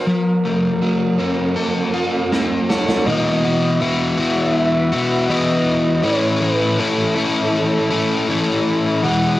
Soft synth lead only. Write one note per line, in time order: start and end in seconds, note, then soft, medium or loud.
0.03 2.29 A#4 medium
2.67 3.07 C#5 loud
3.06 3.83 D#5 loud
3.81 4.56 E5 loud
4.57 5.30 E5 loud
5.29 6.05 D#5 loud
6.03 6.44 C#5 loud
6.42 6.81 B4 loud
6.80 7.54 A4 medium
7.57 8.63 A4 medium
9.02 9.40 F#5 loud